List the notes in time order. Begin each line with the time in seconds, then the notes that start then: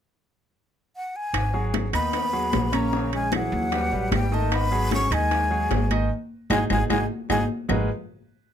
0.96 F#5
1.16 G#5
1.33 G#1, high bongo, high conga, high timbale, claves
1.53 F#3 F#4 G#4, high conga
1.74 high bongo, high conga, high timbale, low timbale
1.93 D#2 D#3 B3 D#4 D#5 B5, high timbale, claves
2.13 high bongo, high conga, high timbale
2.33 F#3 F#4 G#4, high conga
2.53 A#1, high bongo, low bongo, high conga, high timbale, low timbale
2.72 C#3 A#3 C#4 C#5 A#5, high conga, high timbale, claves
2.93 C#3 C#4 C#5, high bongo, high conga
3.12 G#3 G#5, high bongo, high conga, high timbale
3.32 E3 F#3 E4 G#4 F#5, high bongo, high conga, high timbale, low timbale, claves
3.52 D#2, high bongo, high conga
3.72 G3 G4 B4, high bongo, high conga, high timbale
3.92 A1 G3 G4 B4, high conga
4.12 G#1 G3 G5, high bongo, low bongo, high conga, high timbale, low timbale, claves
4.32 D#3 A3 D#4 D#5 A5, high bongo
4.51 B3 B5, high bongo, high conga, high timbale, claves
4.72 F#3 F#4 G#4, high conga
4.91 C#4 C#6, high bongo, high conga, high timbale, low timbale
5.11 D#2 D#3 G#3 D#4 D#5 G#5, high timbale, claves
5.31 high bongo, high conga, high timbale
5.50 F#3 F#4 G#4, high conga
5.71 G#1, high bongo, low bongo, high conga, high timbale, low timbale
5.91 D#3 D#4 D#5, high conga, high timbale, claves
6.50 G#1 G#3 D#4 F#4 G#4 G#5, low bongo, high conga, high timbale, claves
6.70 G#1 G#3 D#4 F#4 G#4 G#5, low bongo, high conga, high timbale, claves
6.90 G#1 G#3 D#4 F#4 G#4 G#5, low bongo, high conga, high timbale, claves
7.30 G#1 G#3 D#4 F#4 G#4 G#5, low bongo, high conga, high timbale, claves
7.69 G#1 G#3 D#4 F#4 G#4 A#4 B4, low bongo, low conga, low timbale, claves